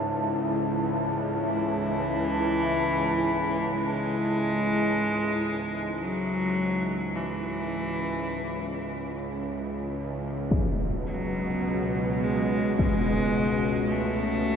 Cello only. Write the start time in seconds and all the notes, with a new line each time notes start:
1.46 E3
3.72 G#3
5.94 G#3
5.99 F#3
7.15 E3
11.07 F#3
12.23 G#3
12.32 F#3 G#3
12.77 G#3
13.91 A3